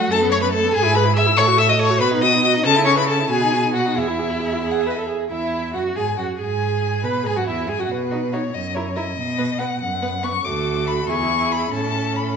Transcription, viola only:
0.00 0.10 A3 medium
0.11 0.23 A3 medium
0.21 0.33 B3 medium
0.32 0.44 A3 medium
0.42 0.52 B3 medium
0.52 0.65 A3 medium
0.63 0.73 B3 medium
0.73 0.86 G#4 medium
0.84 0.96 E4 medium
0.95 1.07 G#4 medium
1.06 1.16 E4 medium
1.16 1.28 G#4 medium
1.26 1.36 E4 medium
1.37 1.49 A4 medium
1.47 1.59 F#4 medium
1.57 1.70 A4 medium
1.68 1.78 F#4 medium
1.79 1.92 A4 medium
1.90 2.00 F#4 medium
2.01 2.13 F#4 medium
2.11 2.23 D#4 medium
2.22 2.34 F#4 medium
2.33 2.43 D#4 medium
2.44 2.56 F#4 medium
2.54 2.64 D#4 medium
2.65 2.78 C#4 medium
2.76 2.88 E4 medium
2.87 2.99 C#4 medium
2.98 3.08 E4 medium
3.09 3.21 C#4 medium
3.20 3.30 E4 medium
3.30 3.43 F#4 medium
3.41 3.54 D#4 soft
3.52 3.64 F#4 soft
3.63 3.74 D#4 soft
3.75 3.87 F#4 soft
3.86 3.96 D#4 soft
3.97 4.09 G#4 medium
4.08 4.21 E4 soft
4.19 4.31 G#4 soft
4.30 4.41 E4 soft
4.42 4.55 G#4 soft
4.53 4.64 E4 soft
4.65 4.88 G#4 medium
4.87 4.98 B4 medium
4.98 5.08 A4 medium
5.09 5.31 G#4 soft
5.31 5.72 E4 soft
5.75 5.96 F#4 soft
5.97 6.05 G#4 soft
6.18 6.39 F#4 soft
6.40 7.03 G#4 medium
7.05 7.25 B4 soft
7.26 7.38 G#4 medium
7.37 7.49 F#4 soft
7.47 7.70 E4 medium
7.68 7.81 G#4 medium
7.80 7.90 F#4 soft
8.12 8.19 D#4 soft
8.33 8.40 D#4 soft
8.76 8.82 E4 soft
8.96 9.03 E4 soft
9.38 9.45 B3 soft
9.60 9.66 B3 soft
10.02 10.09 B3 soft
10.23 10.30 B3 soft
10.45 11.10 F#4 soft
11.09 11.73 E4 soft
11.74 12.36 C#4 medium

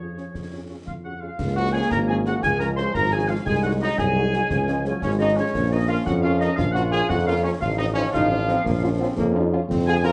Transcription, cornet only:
0.16 0.23 C#5 soft
0.51 0.58 C#5 soft
0.68 0.75 C#5 soft
0.86 0.94 F4 medium
1.03 1.11 F#4 medium
1.20 1.53 F4 medium
1.56 1.72 F#4 loud
1.72 1.89 G#4 loud
1.92 1.99 A#4 loud
2.09 2.16 G#4 loud
2.26 2.44 F#4 loud
2.42 2.59 G#4 loud
2.59 2.67 A#4 loud
2.77 2.93 C5 loud
2.95 3.14 A#4 loud
3.13 3.29 G#4 loud
3.30 3.37 F4 loud
3.48 3.55 G#4 loud
3.65 3.73 F#4 loud
3.83 3.98 D#4 loud
3.99 4.98 G#4 loud
5.02 5.10 C#4 loud
5.20 5.37 D#4 loud
5.36 5.70 C#4 loud
5.71 5.79 D#4 loud
5.88 6.05 F4 loud
6.06 6.14 F#4 loud
6.23 6.39 F4 loud
6.40 6.56 D#4 loud
6.57 6.65 F4 loud
6.74 6.82 F#4 loud
6.91 7.08 G#4 loud
7.09 7.17 F#4 loud
7.27 7.43 F4 loud
7.44 7.52 C#4 loud
7.61 7.69 F4 loud
7.78 7.86 D#4 loud
7.94 8.11 C#4 loud
8.12 9.13 F4 loud
9.88 9.95 G#4 loud
10.04 10.12 A#4 loud

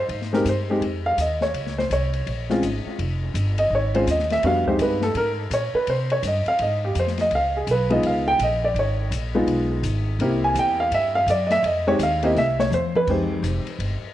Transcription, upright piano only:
0.00 0.31 C5 medium
0.33 0.45 G#3 medium
0.33 0.45 C4 medium
0.33 0.45 D#4 medium
0.33 0.45 G4 medium
0.33 0.46 A#4 medium
0.49 0.81 C5 medium
0.70 0.81 G#3 medium
0.70 0.81 C4 medium
0.70 0.82 D#4 medium
0.70 0.82 G4 medium
1.06 1.18 F5 medium
1.21 1.42 D#5 medium
1.42 1.75 C#5 medium
1.78 1.91 C5 medium
1.93 2.25 C#5 medium
2.50 2.62 G#3 medium
2.50 2.62 C4 medium
2.50 2.62 C#4 medium
2.50 2.62 F4 medium
3.59 3.71 D#5 medium
3.75 3.95 C#5 medium
3.94 4.06 G#3 medium
3.94 4.06 C4 medium
3.94 4.06 C#4 medium
3.94 4.06 F4 medium
3.94 4.08 C5 medium
4.11 4.31 D#5 medium
4.32 4.44 E5 medium
4.44 4.64 G3 medium
4.44 4.64 B3 medium
4.44 4.64 D4 medium
4.44 4.64 F#4 medium
4.44 4.67 F5 medium
4.67 4.98 G#3 medium
4.67 4.98 C4 medium
4.67 4.98 D#4 medium
4.67 4.98 G4 medium
4.67 4.80 C5 medium
4.82 5.03 B4 medium
5.03 5.15 A4 medium
5.17 5.30 A#4 medium
5.54 5.75 C#5 medium
5.75 5.87 B4 medium
5.90 6.11 C5 medium
6.12 6.24 C#5 medium
6.27 6.47 D#5 medium
6.48 6.60 F5 loud
6.62 6.83 D#5 medium
6.85 6.96 G4 medium
6.99 7.20 C5 medium
7.21 7.32 D#5 medium
7.35 7.55 F5 medium
7.57 7.68 G#4 medium
7.71 7.91 B4 medium
7.90 8.37 G#3 medium
7.90 8.37 B3 medium
7.90 8.37 D#4 medium
7.90 8.37 F4 medium
7.90 8.04 D#5 medium
8.07 8.27 F5 medium
8.28 8.40 G5 loud
8.43 8.64 D#5 medium
8.64 8.76 D5 medium
8.79 9.11 C#5 medium
9.35 9.81 G#3 medium
9.35 9.81 B3 medium
9.35 9.81 D#4 medium
9.35 9.81 F4 medium
10.21 11.20 A#3 medium
10.21 11.20 C4 medium
10.21 11.20 E4 medium
10.21 11.21 G4 medium
10.44 10.56 G#5 medium
10.59 10.79 G5 medium
10.80 10.92 F5 medium
10.94 11.15 E5 medium
11.15 11.28 F5 loud
11.30 11.51 D5 medium
11.47 11.49 D#5 medium
11.52 11.64 E5 loud
11.66 11.87 D#5 medium
11.87 11.99 G#3 medium
11.87 11.99 C4 medium
11.87 11.99 D#4 medium
11.87 11.99 G4 medium
11.87 12.00 C#5 medium
12.03 12.23 F5 loud
12.23 12.34 A#3 medium
12.23 12.35 C4 medium
12.23 12.35 E4 medium
12.23 12.35 G4 medium
12.23 12.37 D#5 medium
12.38 12.59 E5 medium
12.60 12.72 C#5 medium
12.74 12.95 C5 medium
12.96 13.08 B4 medium
13.09 13.63 G#3 medium
13.09 13.63 C4 medium
13.09 13.63 D#4 medium
13.09 13.63 G4 medium
13.09 14.13 C5 medium

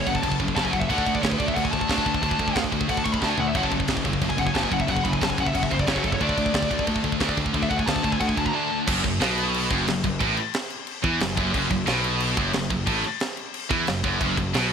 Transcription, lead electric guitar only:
0.07 0.15 F#5 loud
0.15 0.22 A5 loud
0.23 0.33 A5 medium
0.56 0.63 A5 loud
0.64 0.72 G#5 medium
0.71 0.79 F#5 medium
0.80 0.89 E5 loud
0.89 1.13 F#5 loud
1.15 1.22 D5 loud
1.22 1.30 C#5 medium
1.30 1.38 B4 medium
1.39 1.47 D5 loud
1.46 1.54 E5 loud
1.54 1.63 F#5 medium
1.63 1.71 G#5 loud
1.71 1.78 A5 loud
1.80 2.60 A5 loud
2.90 2.98 F#5 medium
2.98 3.04 A5 loud
3.05 3.12 C#6 loud
3.13 3.23 B5 loud
3.23 3.30 A5 medium
3.30 3.39 G#5 medium
3.39 3.47 F#5 medium
3.48 3.56 E5 medium
3.56 3.64 F#5 medium
3.64 3.69 A5 loud
4.29 4.38 G#5 loud
4.39 4.47 F#5 medium
4.46 4.54 G#5 loud
4.54 4.63 A5 loud
4.63 4.72 G#5 medium
4.72 4.81 F#5 loud
4.81 4.89 E5 loud
4.89 5.05 F#5 loud
5.04 5.12 B5 loud
5.12 5.22 G#5 loud
5.22 5.30 A5 loud
5.30 5.38 G#5 medium
5.40 5.47 F#5 loud
5.48 5.55 E5 medium
5.55 5.63 F#5 loud
5.63 5.71 E5 loud
5.71 5.80 C5 loud
5.80 5.87 D5 loud
5.88 5.96 C#5 loud
5.97 6.04 F#4 medium
6.04 6.13 A4 medium
6.14 6.21 C#5 medium
6.22 6.84 D5 loud
7.63 7.69 E5 medium
7.69 7.78 F#5 loud
7.78 7.86 G#5 loud
7.86 8.12 A5 loud
8.12 8.20 G#5 loud
8.20 8.28 F#5 medium
8.28 8.38 G#5 medium
8.38 8.45 A5 loud
8.45 8.54 A#5 loud
8.55 8.78 A5 loud

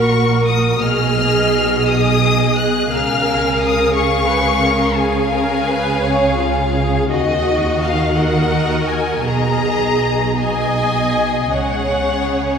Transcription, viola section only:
0.00 0.81 A#4 medium
0.80 2.90 G#4 medium
2.90 3.92 A#4 medium
3.93 4.29 G#4 medium
4.28 4.63 B4 medium
4.65 4.99 A#4 medium
4.98 5.32 G#4 medium
5.32 5.68 A#4 medium
5.68 6.03 B4 medium
6.02 6.38 C#5 medium
6.38 6.74 F4 medium
6.74 7.10 G#4 medium
7.08 8.13 F#4 medium
8.16 9.25 A#4 medium
9.25 10.37 G#4 medium
10.37 11.52 D#5 medium
11.53 12.58 C#5 medium

